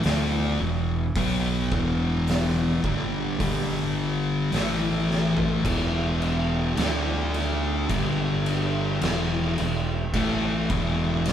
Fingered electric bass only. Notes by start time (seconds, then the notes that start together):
0.04 D2
0.60 E1
1.16 B1
1.72 E1
2.84 G1
3.40 G1
4.53 A1
5.65 E1
6.78 D2
7.90 G1
9.03 E1
9.59 E1
10.14 A1
10.70 E1